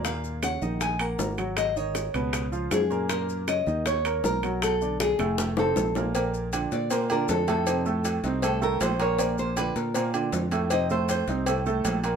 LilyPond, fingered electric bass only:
\new Staff \with { instrumentName = "Fingered electric bass" } { \clef bass \time 4/4 \key dis \minor \tempo 4 = 158 dis,4. ais,,4. gis,,4~ | gis,,4. cis,4. fis,4~ | fis,4. dis,4. b,,4~ | b,,4. eis,,4. ais,,4~ |
\key bes \major ais,,4. bes,4. f,4~ | f,4. c,4. bes,,4~ | bes,,4. bes,4. f,4~ | f,4. c,4. bes,,4 | }